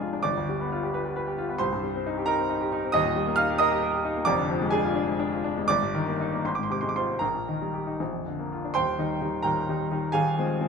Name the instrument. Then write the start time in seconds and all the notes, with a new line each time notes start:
grand piano
Already playing: F1 F2 G#3 D4 G#4 A#4 G#5 A#5
0.00 F4
0.13 D4
0.23 G1 D5 D6
0.37 D2
0.49 G3
0.60 B3
0.72 F4
0.83 G4
0.94 B4
1.05 G4
1.16 B4
1.27 G4
1.38 F4
1.49 B3
1.58 C2 C5 C6
1.73 G2
1.83 G3
1.95 C4
2.06 D#4
2.18 G4
2.26 D#4 A#4 A#5
2.39 C4
2.50 D#4
2.61 G4
2.72 D#4
2.84 C4
2.92 D#1 D#2 D#5 D#6
3.05 A#2
3.16 G3
3.27 A#3
3.36 D#4 F5 F6
3.49 G4
3.58 A#4 D#5 D#6
3.71 G4
3.83 A#4
3.94 G4
4.05 D#4
4.16 A#3
4.25 F1 F2 D5 D6
4.38 D3
4.50 F3
4.61 G#3
4.71 D4 G#4 G#5
4.84 F4
4.95 D4
5.07 G#3
5.19 D4
5.32 F4
5.44 D4
5.58 G#3
5.68 G1 D5 D6
5.83 G2
5.95 D#3
6.07 A#3
6.21 D#4
6.33 A#3
6.45 G#1 C6
6.55 G#2 D6
6.63 C6
6.70 C3 D6
6.81 G#3 C6
6.89 D6
6.96 F4 C5 C6
7.09 C4
7.19 A#1 A#4 A#5
7.35 A#2
7.48 D#3
7.62 G3
7.74 G4
7.87 D#4
8.00 A#1
8.13 F2
8.26 D3
8.39 A#3
8.52 F4
8.64 D4
8.74 D#1 D#2 C5 G5 C6
8.99 D#3 G3 D#4
9.21 D#3 G3 D#4
9.43 D#1 D#2 A#4 G5 A#5
9.69 D#3 G3 D#4
9.91 D#3 G3 D#4
10.12 D#1 D#2 G#4 F5 G#5
10.38 F3 G#3 C4
10.61 F3 G#3 C4